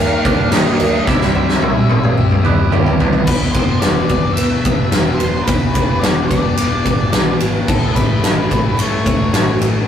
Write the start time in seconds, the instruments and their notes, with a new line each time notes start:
Already playing: clean electric guitar D#3 G3 A#3 G4, distorted electric guitar D#3, twelve-string acoustic guitar A#3, lead electric guitar F5
0.00 fingered electric bass D#2, distorted electric guitar A#3 D#4, twelve-string acoustic guitar G4
0.24 fingered electric bass D#2, clean electric guitar D#3 G3 A#3 D4 G4, kick, crash
0.52 clean electric guitar D#3 G3 A#3 G4, distorted electric guitar D#3 A#3 D#4, fingered electric bass D#3, twelve-string acoustic guitar A#3, lead electric guitar D#5, snare, crash
0.78 fingered electric bass D2, twelve-string acoustic guitar A#3, distorted electric guitar A#3 D#4, crash
1.06 fingered electric bass C2, clean electric guitar C3 G3 E4 G4, distorted electric guitar C3 G3 C4, twelve-string acoustic guitar E3, lead electric guitar E5, kick, snare
1.21 snare
1.35 fingered electric bass C2, twelve-string acoustic guitar G4
1.49 snare
1.62 fingered electric bass C2, twelve-string acoustic guitar E4, high tom
1.89 fingered electric bass A1, distorted electric guitar G3 C4, high tom
2.04 mid tom
2.18 fingered electric bass C2, distorted electric guitar C3 G3 C4, twelve-string acoustic guitar G4
2.31 mid tom
2.44 fingered electric bass C3, clean electric guitar C3 G3 B3 E4 G4, twelve-string acoustic guitar E4, mid tom
2.70 fingered electric bass G2, clean electric guitar C3 G3 E4 G4, distorted electric guitar C3 G3, twelve-string acoustic guitar E3, mid tom
2.75 distorted electric guitar C4
2.87 floor tom
3.00 fingered electric bass D2, distorted electric guitar G3 C4, twelve-string acoustic guitar B3, floor tom
3.13 floor tom
3.26 fingered electric bass E1, distorted electric guitar E2 B2 E3, twelve-string acoustic guitar B3, lead electric guitar B4, kick, crash
3.52 fingered electric bass E1, distorted electric guitar E3, lead electric guitar C5, kick, ride
3.56 distorted electric guitar B2, twelve-string acoustic guitar G4
3.80 fingered electric bass E1, distorted electric guitar E2 B2 E3, lead electric guitar D5, snare, ride
3.84 twelve-string acoustic guitar D4
4.09 fingered electric bass E1, distorted electric guitar B2 E3, twelve-string acoustic guitar B3, kick, ride
4.33 fingered electric bass D2, distorted electric guitar E2, lead electric guitar E5, ride
4.38 distorted electric guitar B2 E3, twelve-string acoustic guitar B3
4.65 fingered electric bass B1, distorted electric guitar B2 E3, twelve-string acoustic guitar B3, kick, ride
4.91 fingered electric bass E1, distorted electric guitar E2 B2 E3, twelve-string acoustic guitar D4, snare, ride
5.14 lead electric guitar C5
5.19 fingered electric bass E1, distorted electric guitar B2 E3, twelve-string acoustic guitar B3, ride
5.44 fingered electric bass E1, distorted electric guitar E2, twelve-string acoustic guitar B3, lead electric guitar B4, kick, ride
5.48 distorted electric guitar B2 E3
5.74 fingered electric bass E1, distorted electric guitar E3, twelve-string acoustic guitar G4, kick, ride
5.78 distorted electric guitar B2
5.99 distorted electric guitar E2, twelve-string acoustic guitar D4, lead electric guitar D5
6.03 fingered electric bass E1, distorted electric guitar B2 E3, snare, ride
6.27 fingered electric bass E1, distorted electric guitar E3, twelve-string acoustic guitar B3, lead electric guitar D5, kick, ride
6.33 distorted electric guitar B2
6.57 fingered electric bass E1, distorted electric guitar E2 B2, twelve-string acoustic guitar B3, ride
6.61 distorted electric guitar E3
6.84 fingered electric bass A1, distorted electric guitar E3, twelve-string acoustic guitar B3, kick, ride
6.88 distorted electric guitar B2
7.12 fingered electric bass B1, distorted electric guitar E2 B2, twelve-string acoustic guitar D4, snare, ride
7.16 distorted electric guitar E3
7.40 fingered electric bass G#1, distorted electric guitar B2 E3, twelve-string acoustic guitar B3, ride
7.68 fingered electric bass A1, distorted electric guitar A2 E3 A3, twelve-string acoustic guitar E3, lead electric guitar A4, kick, crash
7.95 fingered electric bass A1, distorted electric guitar E3 A3, twelve-string acoustic guitar G4, lead electric guitar B4, kick, ride
8.23 fingered electric bass A1, distorted electric guitar A2 E3 A3, twelve-string acoustic guitar C#4, snare, ride
8.50 fingered electric bass A1, distorted electric guitar E3 A3, twelve-string acoustic guitar A3, kick, ride
8.77 fingered electric bass G2, distorted electric guitar A2 E3, twelve-string acoustic guitar E3, lead electric guitar C#5, ride
8.82 distorted electric guitar A3
9.04 fingered electric bass E1, twelve-string acoustic guitar A3, distorted electric guitar A3, kick, ride
9.09 distorted electric guitar E3
9.32 fingered electric bass A1, distorted electric guitar A2 E3, twelve-string acoustic guitar C#4, snare, ride
9.37 distorted electric guitar A3
9.59 fingered electric bass A1, twelve-string acoustic guitar A3, distorted electric guitar A3, ride
9.63 distorted electric guitar E3